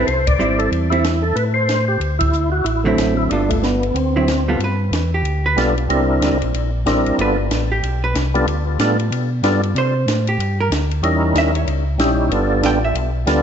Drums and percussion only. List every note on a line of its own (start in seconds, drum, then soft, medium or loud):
0.08 ride medium
0.27 kick medium
0.27 ride medium
0.40 hi-hat pedal medium
0.60 ride soft
0.72 ride soft
0.92 ride soft
1.04 snare medium
1.04 hi-hat pedal medium
1.04 ride medium
1.36 ride medium
1.69 snare medium
1.69 hi-hat pedal soft
1.69 ride medium
2.01 ride medium
2.21 kick medium
2.21 ride medium
2.33 hi-hat pedal medium
2.66 ride medium
2.98 snare medium
2.98 hi-hat pedal medium
2.98 ride medium
3.31 ride medium
3.50 kick soft
3.50 ride medium
3.63 snare medium
3.63 hi-hat pedal medium
3.83 ride soft
3.96 ride medium
4.28 snare medium
4.28 hi-hat pedal soft
4.28 ride medium
4.60 ride medium
4.93 snare medium
4.93 hi-hat pedal soft
4.93 ride medium
5.25 ride medium
5.58 snare medium
5.58 hi-hat pedal medium
5.58 ride medium
5.78 ride soft
5.90 ride medium
6.22 snare medium
6.22 hi-hat pedal medium
6.22 ride medium
6.42 ride soft
6.54 ride medium
6.86 snare medium
6.86 hi-hat pedal soft
6.86 ride medium
7.06 ride soft
7.19 ride medium
7.51 snare medium
7.51 hi-hat pedal medium
7.51 ride medium
7.83 ride medium
8.15 snare medium
8.15 hi-hat pedal soft
8.15 ride medium
8.35 ride soft
8.48 ride medium
8.79 snare medium
8.79 hi-hat pedal medium
8.79 ride medium
8.99 ride soft
9.12 ride medium
9.44 snare medium
9.44 hi-hat pedal soft
9.44 ride medium
9.63 ride soft
9.76 ride medium
10.08 snare medium
10.08 hi-hat pedal medium
10.08 ride medium
10.27 ride soft
10.40 ride medium
10.72 snare medium
10.72 hi-hat pedal medium
10.72 ride medium
10.91 ride soft
11.04 ride medium
11.35 snare medium
11.35 hi-hat pedal medium
11.35 ride medium
11.55 ride soft
11.68 ride medium
11.99 snare medium
11.99 hi-hat pedal medium
11.99 ride medium
12.32 ride medium
12.63 snare medium
12.63 hi-hat pedal medium
12.63 ride medium
12.95 ride medium
13.27 snare medium
13.27 hi-hat pedal medium
13.27 ride medium